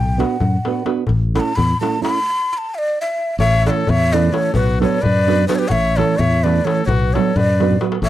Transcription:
Already playing: fingered electric bass B1, ney G5
0.18 nylon-string guitar B3 D4 F#4 B4, ney F#5, darbuka tek
0.31 darbuka tek
0.40 fingered electric bass F#2, darbuka dum
0.65 nylon-string guitar B3 D4 F#4 B4, darbuka tek
0.86 nylon-string guitar B3 D4 F#4 B4, darbuka tek
0.97 darbuka tek
1.07 fingered electric bass A1, darbuka dum
1.35 nylon-string guitar A3 C#4 E4 A4, ney B5, darbuka tek
1.40 ney A5
1.47 darbuka tek
1.56 fingered electric bass E2, ney B5, darbuka dum
1.81 nylon-string guitar A3 C#4 E4 A4, ney A5, darbuka tek
2.01 nylon-string guitar A3 C#4 E4 A4, ney B5, darbuka tek
2.16 darbuka tek
2.53 ney B5
2.58 ney A5
2.75 ney D5 E5
3.01 ney E5
3.39 fingered electric bass A1, trumpet C#5, ney E5, darbuka dum
3.54 darbuka tek
3.66 nylon-string guitar E3 A3 C#4 E4 A4, trumpet A4, ney D5, darbuka tek
3.70 ney C#5
3.77 darbuka tek
3.87 fingered electric bass E2, trumpet C#5, ney E5, darbuka dum
4.01 darbuka tek
4.12 nylon-string guitar E3 A3 C#4 E4 A4, trumpet B4, ney D5, darbuka tek
4.32 nylon-string guitar E3 A3 C#4 E4 A4, ney C#5, darbuka tek
4.37 trumpet A4
4.54 fingered electric bass B1, trumpet F#4, ney B4, darbuka dum
4.68 darbuka tek
4.80 nylon-string guitar F#3 B3 D4 F#4 B4, trumpet A4, ney C#5, darbuka tek
4.93 darbuka tek
5.02 fingered electric bass F#2, trumpet B4, ney D5, darbuka dum
5.16 darbuka tek
5.27 nylon-string guitar F#3 B3 D4 F#4 B4, darbuka tek
5.48 nylon-string guitar F#3 B3 D4 F#4 B4, trumpet G4, ney B4, darbuka tek
5.52 trumpet A4, ney C#5
5.58 trumpet G4, ney B4
5.68 fingered electric bass A1, trumpet C#5, ney E5 F#5, darbuka dum
5.85 darbuka tek
5.96 nylon-string guitar E3 A3 C#4 E4 A4, trumpet A4, ney C#5, darbuka tek
6.16 fingered electric bass E2, trumpet C#5, ney E5, darbuka dum
6.35 darbuka tek
6.43 nylon-string guitar E3 A3 C#4 E4 A4, trumpet B4, ney D5, darbuka tek
6.65 nylon-string guitar E3 A3 C#4 E4 A4, trumpet A4, ney C#5, darbuka tek
6.85 fingered electric bass B1, trumpet F#4, ney C#5, darbuka dum
6.89 ney B4
7.13 nylon-string guitar F#3 B3 D4 F#4 B4, trumpet A4, ney C#5, darbuka tek
7.36 fingered electric bass F#2, trumpet B4, ney D5, darbuka dum
7.49 darbuka tek
7.60 nylon-string guitar F#3 B3 D4 F#4 B4, darbuka tek
7.71 darbuka dum
7.81 nylon-string guitar F#3 B3 D4 F#4 B4, darbuka tek
7.92 darbuka tek
8.02 fingered electric bass A1, trumpet C#5, ney E5, darbuka dum

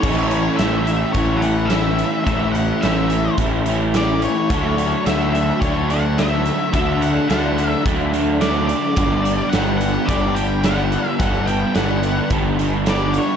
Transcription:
Already playing: lead electric guitar C#5
0.03 picked electric bass A1, overdriven electric guitar A2 E3 A3 C#4 E4, kick, crash
0.31 closed hi-hat
0.57 picked electric bass A1, overdriven electric guitar E3 A3 C#4, lead electric guitar E5, snare, closed hi-hat
0.61 overdriven electric guitar E4
0.85 lead electric guitar E5, closed hi-hat
1.13 picked electric bass A1, overdriven electric guitar A2 E3 A3, lead electric guitar C#5, kick, closed hi-hat
1.17 overdriven electric guitar C#4 E4
1.37 lead electric guitar F#5
1.42 overdriven electric guitar A3 C#4 E4, closed hi-hat
1.66 lead electric guitar E5, closed hi-hat
1.70 overdriven electric guitar E3 A3 C#4 E4, snare
1.99 closed hi-hat
2.24 picked electric bass A1, overdriven electric guitar A2 E3 A3 C#4 E4, lead electric guitar E5, kick, closed hi-hat
2.52 lead electric guitar F#5, closed hi-hat
2.81 picked electric bass A1, overdriven electric guitar E3 A3 C#4, lead electric guitar E5, snare, closed hi-hat
2.85 overdriven electric guitar E4
3.10 closed hi-hat
3.38 picked electric bass A1, overdriven electric guitar A2 E3 A3 C#4 E4, kick, closed hi-hat
3.66 overdriven electric guitar A3 C#4 E4, closed hi-hat
3.94 overdriven electric guitar E3 A3 C#4 E4, lead electric guitar D5, snare, closed hi-hat
4.22 lead electric guitar C#5, closed hi-hat
4.50 picked electric bass D2, overdriven electric guitar D3 F#3 A3 D4, kick, closed hi-hat
4.78 closed hi-hat
5.06 picked electric bass D2, overdriven electric guitar D3 F#3 A3 D4, lead electric guitar E5, snare, closed hi-hat
5.30 lead electric guitar E5
5.35 closed hi-hat
5.61 picked electric bass D2, overdriven electric guitar D3 F#3 A3 D4, lead electric guitar C#5, kick, closed hi-hat
5.89 overdriven electric guitar F#3 A3 D4, lead electric guitar F#5, closed hi-hat
6.18 overdriven electric guitar D3 F#3 A3 D4, lead electric guitar E5, snare, closed hi-hat
6.46 closed hi-hat
6.73 picked electric bass D2, overdriven electric guitar D3 F#3 A3 D4, lead electric guitar E5, kick, closed hi-hat
7.02 lead electric guitar F#5, closed hi-hat
7.29 picked electric bass D2, overdriven electric guitar D3 F#3 A3 D4, lead electric guitar F#5, snare, closed hi-hat
7.58 closed hi-hat
7.71 lead electric guitar E5
7.85 picked electric bass D2, overdriven electric guitar D3 F#3 A3 D4, kick, closed hi-hat
8.12 overdriven electric guitar F#3 A3 D4, closed hi-hat
8.40 overdriven electric guitar D3 F#3 A3 D4, lead electric guitar D5, snare, closed hi-hat
8.67 lead electric guitar D5, closed hi-hat
8.96 picked electric bass G1, overdriven electric guitar G2 D3 G3 B3 D4, kick, closed hi-hat
9.25 closed hi-hat
9.49 lead electric guitar F#5, snare, closed hi-hat
9.54 picked electric bass G1, overdriven electric guitar D3 G3 B3 D4
9.78 lead electric guitar F#5, closed hi-hat
10.06 picked electric bass G1, overdriven electric guitar G2 D3 G3, lead electric guitar D5, kick, closed hi-hat
10.11 overdriven electric guitar B3 D4
10.35 overdriven electric guitar G3 B3 D4, lead electric guitar G5, closed hi-hat
10.64 overdriven electric guitar D3 G3 B3 D4, lead electric guitar F#5, snare, closed hi-hat
10.92 closed hi-hat
11.20 picked electric bass G1, overdriven electric guitar G2 D3 G3 B3 D4, lead electric guitar F#5, kick, closed hi-hat
11.47 lead electric guitar G5, closed hi-hat
11.75 picked electric bass G1, overdriven electric guitar D3 G3 B3 D4, lead electric guitar F#5, snare, closed hi-hat
12.03 closed hi-hat
12.30 picked electric bass G1, overdriven electric guitar G2 D3 G3 B3 D4, kick, closed hi-hat
12.59 overdriven electric guitar G3 B3 D4, closed hi-hat
12.85 overdriven electric guitar D3 G3 B3 D4, snare, closed hi-hat
12.90 lead electric guitar D5
13.14 closed hi-hat
13.18 lead electric guitar C#5

